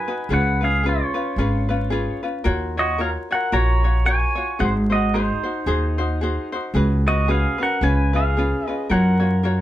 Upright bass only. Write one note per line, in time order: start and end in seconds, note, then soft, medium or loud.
0.29 0.99 C#2 medium
1.36 2.06 G#1 medium
2.45 3.15 D#2 loud
3.52 4.22 A#1 medium
4.60 5.30 G#1 medium
5.66 6.36 D#2 medium
6.74 7.44 C#2 loud
7.81 8.51 C#2 medium
8.90 9.60 F#2 medium